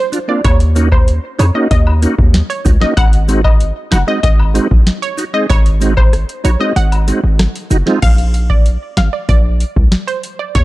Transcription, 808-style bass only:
0, 0, Header, 1, 2, 480
1, 0, Start_track
1, 0, Tempo, 631579
1, 339, Time_signature, 4, 2, 24, 8
1, 8088, End_track
2, 0, Start_track
2, 0, Title_t, "808-style bass"
2, 0, Program_c, 0, 38
2, 338, Note_on_c, 0, 39, 105
2, 909, Note_off_c, 0, 39, 0
2, 1058, Note_on_c, 0, 41, 88
2, 1149, Note_off_c, 0, 41, 0
2, 1298, Note_on_c, 0, 39, 113
2, 1570, Note_off_c, 0, 39, 0
2, 1660, Note_on_c, 0, 39, 98
2, 1841, Note_off_c, 0, 39, 0
2, 2018, Note_on_c, 0, 37, 90
2, 2109, Note_off_c, 0, 37, 0
2, 2258, Note_on_c, 0, 32, 108
2, 2829, Note_off_c, 0, 32, 0
2, 2978, Note_on_c, 0, 30, 97
2, 3069, Note_off_c, 0, 30, 0
2, 3219, Note_on_c, 0, 32, 106
2, 3491, Note_off_c, 0, 32, 0
2, 3581, Note_on_c, 0, 34, 100
2, 3670, Note_off_c, 0, 34, 0
2, 4179, Note_on_c, 0, 32, 109
2, 4749, Note_off_c, 0, 32, 0
2, 4899, Note_on_c, 0, 34, 96
2, 4989, Note_off_c, 0, 34, 0
2, 5139, Note_on_c, 0, 32, 113
2, 5411, Note_off_c, 0, 32, 0
2, 5499, Note_on_c, 0, 32, 92
2, 5680, Note_off_c, 0, 32, 0
2, 5858, Note_on_c, 0, 30, 101
2, 5949, Note_off_c, 0, 30, 0
2, 6099, Note_on_c, 0, 34, 109
2, 6669, Note_off_c, 0, 34, 0
2, 6819, Note_on_c, 0, 32, 93
2, 6909, Note_off_c, 0, 32, 0
2, 7058, Note_on_c, 0, 34, 107
2, 7330, Note_off_c, 0, 34, 0
2, 7421, Note_on_c, 0, 36, 96
2, 7511, Note_off_c, 0, 36, 0
2, 8018, Note_on_c, 0, 39, 105
2, 8088, Note_off_c, 0, 39, 0
2, 8088, End_track
0, 0, End_of_file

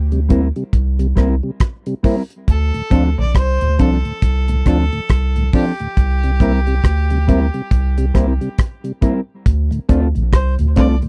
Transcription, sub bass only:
0, 0, Header, 1, 2, 480
1, 0, Start_track
1, 0, Key_signature, -1, "minor"
1, 0, Tempo, 872093
1, 1364, Time_signature, 4, 2, 24, 8
1, 6102, End_track
2, 0, Start_track
2, 0, Title_t, "Sub bass"
2, 0, Program_c, 0, 38
2, 0, Note_on_c, 0, 38, 85
2, 283, Note_off_c, 0, 38, 0
2, 404, Note_on_c, 0, 36, 124
2, 625, Note_off_c, 0, 36, 0
2, 645, Note_on_c, 0, 36, 88
2, 775, Note_off_c, 0, 36, 0
2, 1366, Note_on_c, 0, 38, 118
2, 1496, Note_off_c, 0, 38, 0
2, 1606, Note_on_c, 0, 38, 94
2, 1736, Note_off_c, 0, 38, 0
2, 1751, Note_on_c, 0, 34, 83
2, 1840, Note_off_c, 0, 34, 0
2, 1844, Note_on_c, 0, 36, 79
2, 1975, Note_off_c, 0, 36, 0
2, 1993, Note_on_c, 0, 38, 87
2, 2080, Note_off_c, 0, 38, 0
2, 2092, Note_on_c, 0, 36, 110
2, 2220, Note_off_c, 0, 36, 0
2, 2327, Note_on_c, 0, 36, 113
2, 2548, Note_off_c, 0, 36, 0
2, 2566, Note_on_c, 0, 38, 103
2, 2697, Note_off_c, 0, 38, 0
2, 2808, Note_on_c, 0, 36, 89
2, 3028, Note_off_c, 0, 36, 0
2, 3287, Note_on_c, 0, 36, 117
2, 3745, Note_off_c, 0, 36, 0
2, 3766, Note_on_c, 0, 38, 92
2, 4127, Note_off_c, 0, 38, 0
2, 4247, Note_on_c, 0, 36, 121
2, 4468, Note_off_c, 0, 36, 0
2, 4487, Note_on_c, 0, 36, 89
2, 4618, Note_off_c, 0, 36, 0
2, 5209, Note_on_c, 0, 38, 105
2, 5340, Note_off_c, 0, 38, 0
2, 5446, Note_on_c, 0, 38, 102
2, 5578, Note_off_c, 0, 38, 0
2, 5597, Note_on_c, 0, 34, 86
2, 5681, Note_off_c, 0, 34, 0
2, 5685, Note_on_c, 0, 36, 76
2, 5817, Note_off_c, 0, 36, 0
2, 5836, Note_on_c, 0, 38, 94
2, 5923, Note_off_c, 0, 38, 0
2, 5933, Note_on_c, 0, 36, 94
2, 6061, Note_off_c, 0, 36, 0
2, 6102, End_track
0, 0, End_of_file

